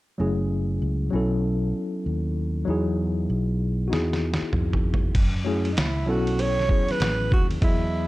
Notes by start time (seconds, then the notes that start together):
0.18 F#1 F#3 A3 C#4 E4 G#4
0.82 C#2
1.10 B1 F#3 B3 C#4 E4
1.16 A4
2.06 D#2
2.65 E2 F#3 B3 D#4
2.69 E4 G#4
3.30 B1
3.88 E2 B3 D#4 F#4
3.92 E4 G#4, snare
4.13 snare
4.34 snare
4.42 muted fretless electric bass stroke
4.53 F2, mid tom
4.73 floor tom
4.94 floor tom
5.15 F#2, kick, crash, ride
5.44 F#3 A3 C#4 E4 G#4
5.65 ride
5.72 D#4
5.77 C#2 E4, snare, hi-hat pedal, ride
6.06 B1 F#3 B3 C#4 E4 F#4 A4
6.27 ride
6.39 C#5, ride
6.59 snare
6.68 F#3 B3 C#4 E4 G#4, kick
6.88 B4, snare, ride
7.00 A1, snare, hi-hat pedal, ride
7.32 D#2 F#4, kick
7.51 ride
7.61 E2 F#3 B3 E4 G#4 D#5, kick, ride